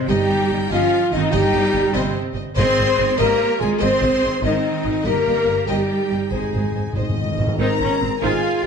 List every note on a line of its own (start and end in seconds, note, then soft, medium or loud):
0.07 0.17 G1 loud
0.07 0.71 G3 loud
0.07 0.70 D#4 loud
0.07 0.69 G4 loud
0.07 0.55 G4 loud
0.07 0.28 D#5 medium
0.07 0.69 G5 loud
0.07 0.48 G5 loud
0.30 0.38 G1 medium
0.30 0.38 D#5 medium
0.51 0.59 G1 medium
0.51 0.59 D#5 medium
0.69 0.79 G1 loud
0.69 1.11 F3 loud
0.69 1.02 C#4 loud
0.69 1.12 F4 loud
0.69 0.90 D#5 loud
0.69 1.12 F5 loud
1.12 1.22 G1 medium
1.12 1.32 D#3 loud
1.12 1.31 C4 loud
1.12 1.32 D#4 loud
1.12 1.34 D#4 loud
1.12 1.32 D#5 loud
1.12 1.20 D#5 medium
1.12 1.33 D#5 loud
1.31 1.42 G1 loud
1.31 1.95 G3 loud
1.31 1.96 D#4 loud
1.31 1.94 G4 loud
1.31 1.95 G4 loud
1.31 1.51 D#5 loud
1.31 1.93 G5 loud
1.31 1.94 G5 loud
1.53 1.61 G1 medium
1.53 1.61 D#5 medium
1.72 1.82 G1 medium
1.72 1.80 D#5 medium
1.94 2.02 G1 loud
1.94 2.15 C3 loud
1.94 2.15 G3 loud
1.94 2.15 C4 loud
1.94 2.16 C5 loud
1.94 2.13 D#5 loud
2.35 2.43 G1 medium
2.35 2.43 D#5 medium
2.56 2.66 G#1 loud
2.56 3.16 G#2 loud
2.56 3.15 C4 loud
2.56 3.16 G#4 loud
2.56 3.15 C5 loud
2.56 2.76 D#5 loud
2.56 3.15 C6 loud
2.77 2.86 G#1 medium
2.77 2.85 D#5 medium
2.98 3.07 G#1 medium
2.98 3.06 D#5 medium
3.18 3.28 G#1 loud
3.18 3.61 A#3 loud
3.18 3.61 G4 loud
3.18 3.59 A#4 loud
3.18 3.38 D#5 loud
3.18 3.60 A#5 loud
3.60 3.70 G#1 medium
3.60 3.81 G#3 loud
3.60 3.83 F4 loud
3.60 3.81 G#4 loud
3.60 3.68 D#5 medium
3.60 3.81 G#5 loud
3.60 3.69 G#5 loud
3.80 3.90 G#1 loud
3.80 4.43 C4 loud
3.80 4.43 G#4 loud
3.80 4.43 C5 loud
3.80 4.42 C5 loud
3.80 4.00 D#5 loud
3.80 4.42 C6 loud
3.80 4.43 C6 loud
4.01 4.10 G#1 medium
4.01 4.09 D#5 medium
4.22 4.31 G#1 medium
4.22 4.30 D#5 medium
4.43 4.51 G#1 medium
4.43 5.05 D#3 medium
4.43 5.05 C4 loud
4.43 5.04 D#4 loud
4.43 5.05 D#4 loud
4.43 4.62 D#5 medium
4.43 5.06 D#5 loud
4.43 5.05 D#5 loud
4.83 4.93 G#1 medium
4.83 4.91 D#5 medium
5.04 5.14 G1 medium
5.04 5.67 A#3 loud
5.04 5.68 G4 loud
5.04 5.68 A#4 loud
5.04 5.69 A#4 loud
5.04 5.24 D#5 medium
5.04 5.68 A#5 loud
5.04 5.67 A#5 loud
5.27 5.35 G1 medium
5.27 5.35 D#5 medium
5.46 5.54 G1 medium
5.46 5.55 D#5 medium
5.67 5.76 G1 medium
5.67 6.31 G3 medium
5.67 6.31 D#4 medium
5.67 6.30 G4 loud
5.67 6.32 G4 medium
5.67 5.88 D#5 medium
5.67 6.31 G5 medium
6.11 6.20 G1 medium
6.11 6.19 D#5 medium
6.31 6.40 G#1 medium
6.31 6.39 G#2 soft
6.31 6.94 G#3 medium
6.31 6.94 D#4 medium
6.31 6.93 G#4 medium
6.31 6.94 G#4 medium
6.31 6.51 C5 medium
6.31 6.95 G#5 medium
6.41 6.47 G#2 soft
6.48 6.54 G#2 soft
6.54 6.62 G#1 medium
6.54 6.62 G#2 medium
6.54 6.62 C5 soft
6.63 6.70 G#2 soft
6.71 6.83 G#1 soft
6.71 6.78 G#2 medium
6.71 6.83 C5 medium
6.79 6.85 G#2 medium
6.87 6.92 G#2 medium
6.93 7.04 G#1 medium
6.93 6.99 G#2 medium
6.93 7.55 D#4 medium
6.93 7.15 C5 medium
6.93 7.55 D#5 medium
6.93 7.56 D#5 medium
7.01 7.07 G#2 medium
7.09 7.16 G#2 medium
7.17 7.23 G#2 medium
7.24 7.30 G#2 medium
7.32 7.38 G#2 medium
7.38 7.46 G#1 soft
7.38 7.46 G#2 loud
7.38 7.46 C5 medium
7.47 7.54 G#2 loud
7.59 7.67 G#1 medium
7.59 7.79 D#3 medium
7.59 7.79 C4 medium
7.59 7.79 D#4 loud
7.59 8.21 A#4 loud
7.59 8.22 A#5 loud
7.81 7.89 G#1 medium
7.81 7.89 D#3 medium
7.81 7.89 C4 medium
7.81 8.01 C#4 medium
8.01 8.10 G#1 medium
8.01 8.09 D#3 medium
8.01 8.09 C4 medium
8.01 8.10 C4 medium
8.21 8.30 G#1 medium
8.21 8.41 D#3 loud
8.21 8.41 C4 medium
8.21 8.66 F4 loud
8.21 8.64 G#4 loud
8.21 8.62 G#5 medium
8.21 8.63 G#5 medium
8.21 8.65 G#5 medium
8.62 8.66 G4 loud
8.62 8.66 G5 loud